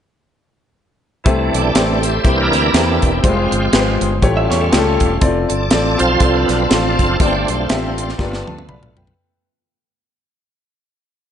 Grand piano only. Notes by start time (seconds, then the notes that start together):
1.26 C3 A3 E4 G4 C5
1.75 A3 E4 G4 C5
2.24 C3 A#3 E4 G4 C5
2.73 A#3 E4 G4 C5
3.23 G3 F4 G4 C5
3.29 G#3
3.73 G#3 F4 G4 B4
3.80 C5
4.22 A2 A3 F4 G4 C#5
4.72 A3 F4 G4 G#4
4.79 A4
5.21 C4 E4 A4 D5
5.28 F4
5.71 C4 F4 A4 D5
6.21 C4 F4 A4 D5
6.70 C4 F4 A4 F5
7.20 G2 B3 F4 G4 D5
7.26 C4
7.69 B3 F4 G4 E5
7.75 C4
8.18 G2 A#3 F4 G4 D5
8.24 B3
8.47 A5
8.69 D5 B5
8.97 B4 G5